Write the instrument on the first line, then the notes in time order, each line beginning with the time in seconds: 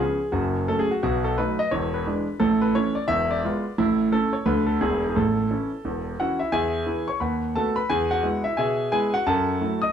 grand piano
Already playing: G#4
0.00 F3 B3 C#4
0.32 F#1 F#2 F#4
0.68 F#3 A3 C#4 A4
0.79 G#4
0.91 F#4
1.03 B1 B2 F#4
1.24 A4
1.38 F#3 A3 D#4 B4
1.59 D#5
1.71 E1 E2 C#5
1.94 B4
2.07 E3 G#3 D4
2.40 A1 A2 A4
2.62 B4
2.75 E3 A3 C#4 C#5
2.95 D5
3.08 E1 E2 E5
3.31 D5
3.44 G#3 B3 F4
3.78 A1 A2 E4
4.12 A3 C#4 E4 A4
4.33 C#5
4.46 D2 D3 A3 D4 F#4 B4
4.67 A4
4.81 E1 E2 E3 D4 E4 G#4
5.10 G#4
5.16 A1 A2 A4
5.51 E3 C#4 E4
5.85 E1 E2
6.20 E3 C#4 E4 F#4 F#5
6.39 E4 E5
6.52 E2 G#4 E5 G#5
6.86 E3 B3 E4
7.08 C#5 C#6
7.20 D#2 B4 F#5 B5
7.55 A3 B3 F#4 A4 A5
7.76 B4 B5
7.90 E2 G#4 G#5
8.11 F#4 F#5
8.23 G#3 B3 E4
8.44 E4 E5
8.57 B2 G#4 E5 G#5
8.92 G#3 B3 E4 G#4 G#5
9.14 F#4 F#5
9.26 F#2 A4 F#5 A5
9.60 F#3 A3 E4
9.82 D#5 D#6